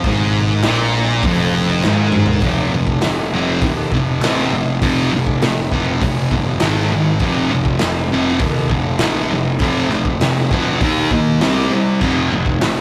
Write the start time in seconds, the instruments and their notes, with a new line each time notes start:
0.04 picked electric bass G#1, distorted electric guitar G#2, kick, open hi-hat
0.63 picked electric bass A#1, distorted electric guitar A#2, snare, clap, open hi-hat
1.23 picked electric bass F1, distorted electric guitar F2, kick, open hi-hat
1.83 picked electric bass G#1, distorted electric guitar G#2, snare, clap
2.12 mid tom
2.26 floor tom
2.40 picked electric bass F1, distorted electric guitar F2, kick, open hi-hat
2.45 distorted electric guitar C3 F3
2.71 picked electric bass F1, distorted electric guitar F2 C3
2.87 kick
3.01 picked electric bass F1, distorted electric guitar F2 C3, snare, clap, open hi-hat
3.32 picked electric bass F1, distorted electric guitar F2 C3 F3
3.61 picked electric bass D#2, distorted electric guitar F2 C3, kick, open hi-hat
3.91 picked electric bass F1, distorted electric guitar F2 C3, kick
4.21 picked electric bass A1, distorted electric guitar F2 C3 F3, snare, clap, open hi-hat
4.51 picked electric bass F1, distorted electric guitar F2 C3
4.81 picked electric bass F1, distorted electric guitar F2 C3 F3, kick, open hi-hat
5.13 picked electric bass F1, distorted electric guitar F2 C3
5.26 kick
5.42 picked electric bass F1, distorted electric guitar F2 C3, snare, clap, open hi-hat
5.71 picked electric bass F1, distorted electric guitar F2 C3 F3, kick
6.01 picked electric bass F1, distorted electric guitar F2 C3, kick, open hi-hat
6.30 picked electric bass G1, distorted electric guitar F2 C3, kick
6.60 picked electric bass G#1, distorted electric guitar G#2 D#3 G#3, snare, clap, open hi-hat
6.92 picked electric bass G#1, distorted electric guitar G#2 D#3
7.19 picked electric bass F1, distorted electric guitar F2 C3 F3, kick, open hi-hat
7.51 picked electric bass F1, distorted electric guitar F2 C3
7.65 kick
7.79 picked electric bass F1, distorted electric guitar F2 C3, snare, clap, open hi-hat
8.12 picked electric bass F1, distorted electric guitar F2 C3 F3
8.39 picked electric bass D#2, distorted electric guitar F2 C3, kick, open hi-hat
8.69 picked electric bass F1, distorted electric guitar F2 C3, kick
8.98 picked electric bass A1, distorted electric guitar F2, snare, clap, open hi-hat
9.02 distorted electric guitar C3 F3
9.29 picked electric bass F1, distorted electric guitar F2 C3
9.59 picked electric bass F1, distorted electric guitar F2 C3 F3, kick, open hi-hat
9.91 picked electric bass F1, distorted electric guitar F2 C3, clap
10.05 kick
10.20 picked electric bass F1, distorted electric guitar F2 C3, snare, clap, open hi-hat
10.51 picked electric bass D2, distorted electric guitar F2 C3 F3, kick
10.81 picked electric bass D#2, distorted electric guitar D#3 A#3 D#4, kick, open hi-hat
11.11 picked electric bass D#2, distorted electric guitar D#3 A#3, kick
11.40 picked electric bass C2, distorted electric guitar C3 G3 C4, snare, clap, open hi-hat
11.70 picked electric bass C2, distorted electric guitar C3 G3
12.01 picked electric bass F1, distorted electric guitar F2 C3 F3, kick, crash
12.30 picked electric bass F1, distorted electric guitar F2 C3
12.46 kick
12.59 picked electric bass F1, distorted electric guitar F2 C3, snare, clap, open hi-hat